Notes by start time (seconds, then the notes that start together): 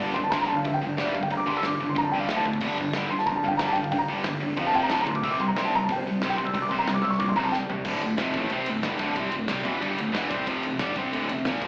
0.00 G1 G2 D3 G3, open hi-hat
0.14 G1 G2 D3 C6, kick
0.24 A5
0.30 G1 G2 D3 G3 A#5 C6, snare, open hi-hat
0.42 A#5
0.47 G1 G2 D3 A5
0.56 F5
0.65 F2 G2 D3 E5, kick, open hi-hat
0.74 G5
0.81 G1 G2 D3
0.97 G1 G2 D3 G3 D5, snare, open hi-hat
1.04 E5
1.13 G1 G2 D3 F5, kick
1.23 G5, kick
1.30 G1 G2 D3 A#5, kick, open hi-hat
1.37 D6
1.46 G1 G2 D3 G3 C6, kick
1.57 E6
1.63 G1 G2 D3 D6, snare, open hi-hat
1.80 G1 G2 D3
1.89 C6
1.95 F2 G2 D3 A#5, kick, open hi-hat
2.04 A5
2.12 C#2 G2 D3 G3 G5
2.19 F5
2.28 D1 D2 A2 D3 E5, snare, open hi-hat
2.36 A5
2.45 F1 D2 A2, kick
2.53 kick
2.60 G1 G2 D3 G3, kick, crash
2.78 G1 G2 D3, kick
2.93 G1 G2 D3 G3, snare, open hi-hat
3.11 G1 G2 D3 C6
3.19 A5, snare
3.26 F2 G2 D3 A#5, kick, open hi-hat
3.36 A5
3.43 G1 G2 D3 F5
3.48 G5
3.57 G2 D3 G3 A#5, snare, open hi-hat
3.61 G1 A5
3.73 G1 G5, kick
3.77 G2 D3
3.81 F5, kick
3.91 G1 G2 D3 G5, kick, open hi-hat
3.98 A#5
4.08 G1 G2 D3 G3, kick
4.24 G1 G2 D3, snare, open hi-hat
4.40 E1 G2 D3
4.56 F1 F2 C3 F3 F5, kick, open hi-hat
4.67 A5
4.73 F1 F2 C3 F3 G5
4.83 A#5
4.89 D1 D2 A2 D3 A5, snare, open hi-hat
5.01 A#5
5.05 D1 D2 A2 C6, kick
5.15 D6, kick
5.23 C2 C3 G3 C4 E6, kick, open hi-hat
5.31 D6
5.40 C2 C3 G3 C6, kick
5.48 A#5
5.55 C2 C3 G3 C4 C6, snare, open hi-hat
5.65 A5
5.72 C2 C3 A#5
5.76 G3
5.84 A5
5.89 A#1 C3 G3 G5, kick, open hi-hat
5.96 C5
6.06 C2 C3 G3
6.22 C2 C3 G3 C4, snare, open hi-hat
6.29 G5
6.38 C2 C3 G3 C6, kick
6.45 E6, kick
6.54 C2 C3 G3 E6, kick, open hi-hat
6.62 D6
6.69 C2 C3 G3 C4 C6, kick
6.79 A#5
6.87 C2 C3 G3 C6, snare, open hi-hat
6.94 D6
7.02 C2 C3 G3 E6
7.10 C#6, snare
7.19 A#1 C3 G3 D6, kick, open hi-hat
7.29 C6
7.36 C2 C3 G3 C4 A#5
7.44 A5
7.52 C2 C3 G3 G5, snare
7.69 C2 C3 G3, floor tom
7.84 D1 D2 A2 D3, kick, crash
8.01 D1 D2 A2, ride
8.17 F1 F2 C3 F3, snare, ride
8.34 A1 A2 E3 A3, kick, ride
8.49 C2 C3 G3 C4, ride
8.66 D1 D2 A2, ride
8.83 G1 G2 D3 G3, snare, ride
8.92 snare
8.99 D1 D2 A2 D3, kick, ride
9.16 C2 C3 G3 C4, kick, ride
9.31 D1 D2 A2, ride
9.47 C2 C3 G3 C4, snare, ride
9.64 E1 E2 B2 E3, kick, ride
9.80 G1 G2 D3 G3, ride
9.96 D1 D2 A2, ride
10.12 E1 E2 B2 E3, snare, ride
10.23 snare
10.30 C2 C3 G3 C4, kick, ride
10.47 F1 F2 C3 F3, kick, ride
10.63 F1 F2 C3, ride
10.79 G1 G2 D3 G3, snare, ride
10.96 C2 C3 G3 C4, kick, ride
11.11 D1 D2 A2 D3, ride
11.28 F1 F2, ride
11.32 C3
11.45 A#1 A#2 F3 A#3, snare, ride
11.54 snare
11.62 F1 F2, kick, ride